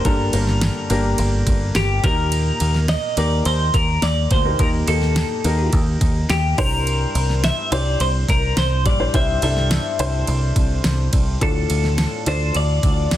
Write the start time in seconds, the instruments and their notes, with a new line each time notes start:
Already playing: upright piano A#3 D4 G4 A#4
0.05 picked electric bass G1, upright piano G2 D3 A#3 D4 G4 A4, clean electric guitar A#4, kick, ride
0.33 picked electric bass G1, upright piano A#3 D4 G4 A#4, ride
0.47 snare
0.61 snare, ride
0.90 picked electric bass G1, upright piano A#3 D4 G4 A#4, ride
1.18 picked electric bass G1, ride
1.47 picked electric bass G1, kick, ride
1.75 picked electric bass G1, clean electric guitar G4, snare, ride
2.04 picked electric bass D#2, upright piano A#2 A#3 D#4 G4 A#4, clean electric guitar A#4, kick, ride
2.32 ride
2.60 picked electric bass D#2, ride
2.75 snare
2.88 clean electric guitar D#5, snare, ride
3.17 picked electric bass D#2, upright piano A#3 D#4 G4 A#4, clean electric guitar D5, ride
3.45 picked electric bass D#2, clean electric guitar C5, ride
3.74 picked electric bass D#2, clean electric guitar A#4, kick, ride
4.02 picked electric bass D#2, clean electric guitar D5, snare, ride
4.31 picked electric bass D2, upright piano A#2, clean electric guitar C5, kick, ride
4.45 upright piano A#3 D#4 G4 A#4
4.59 picked electric bass D#2, upright piano A#3 D#4 G4 A#4, clean electric guitar A#4, kick, ride
4.87 picked electric bass D#2, upright piano A#3 D#4 G4, clean electric guitar A4, ride
5.02 snare
5.16 snare, ride
5.44 picked electric bass D#2, upright piano A#3 D#4 G4 A#4, ride
5.73 picked electric bass D#2, kick, ride
6.01 picked electric bass D#2, kick, ride
6.30 picked electric bass D#2, clean electric guitar G4, snare, ride
6.58 upright piano G2 D4 E4 G4 C5, clean electric guitar A#4, kick, open hi-hat, ride
6.87 ride
7.15 picked electric bass C2, ride
7.30 snare
7.44 clean electric guitar E5, snare, ride
7.72 picked electric bass C2, upright piano D4 E4 G4 C5, clean electric guitar D5, ride
8.00 picked electric bass C2, clean electric guitar C5, ride
8.29 picked electric bass C2, clean electric guitar A#4, kick, ride
8.57 picked electric bass C2, clean electric guitar C5, snare, ride
8.85 picked electric bass A#1, upright piano G2, clean electric guitar D5, kick, ride
8.99 upright piano D4 E4 G4 C5
9.14 picked electric bass C2, upright piano D4 E4 G4 C5, clean electric guitar E5, kick, ride
9.42 picked electric bass C2, upright piano D4 E4 G4 A4, clean electric guitar E5, ride
9.57 snare
9.71 snare, ride
9.99 picked electric bass C2, upright piano D4 E4 G4 C5, ride
10.27 picked electric bass C2, ride
10.56 picked electric bass C2, kick, ride
10.84 picked electric bass C2, snare, ride
11.13 picked electric bass C2, kick, ride
11.41 picked electric bass D2, upright piano A2 D4 F4 A4 D5, clean electric guitar A4, kick, ride
11.70 picked electric bass D2, ride
11.84 snare
11.98 snare, ride
12.26 picked electric bass D2, upright piano D4 F4 A4 D5, clean electric guitar C5, ride
12.55 picked electric bass D2, clean electric guitar D5, ride
12.83 picked electric bass D2, kick, ride
13.11 picked electric bass D2, snare, ride